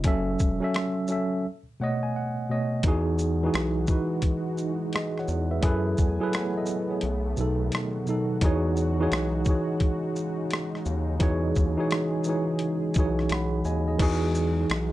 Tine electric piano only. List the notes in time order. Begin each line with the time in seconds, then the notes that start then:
0.04 F#3 C#4 A4 E5
0.60 F#3 C#4 A4 E5
1.09 F#3 C#4 A4 E5
1.80 B2 A3 C#5 D#5 F#5
2.03 G#5
2.16 F#5
2.50 B2 A3 C#5 D#5
2.84 E3 D#4 F#4 G#4
3.43 E3 D#4 F#4 G#4
3.89 E3 D#4 F#4 B4
4.95 G#4 D#5
5.19 C#5 F#5
5.51 B4 E5
5.61 F#3 E4 G#4 A4 B4
6.20 F#3 E4 G#4 A4 B4
6.36 C#5 F#5
6.58 A4 D#5
6.90 G#4 C#5
7.37 B2 F#3 D#4 A4
8.06 B2 F#3 D#4 A4
8.42 E3 D#4 F#4 G#4 C#5
8.99 E3 D#4 F#4 G#4 C#5
9.46 E3 D#4 F#4 G#4 C#5
11.19 E3 D#4 F#4 G#4 C#5
11.77 E3 D#4 F#4 G#4 C#5
12.26 E3 D#4 F#4 G#4 C#5
12.96 E3 D#4 F#4 G#4 C#5
13.32 F#5 B5
13.65 D#5 G#5
13.88 G#4 D#5
13.98 E3 D#4 F#4 G#4